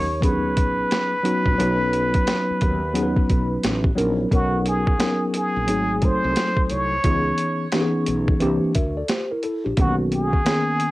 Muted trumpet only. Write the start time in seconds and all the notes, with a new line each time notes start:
Already playing: C#5
0.24 B4
4.33 F#4
4.68 G#4
5.36 G#4
6.04 C5
6.71 C#5
9.81 F#4
10.14 G#4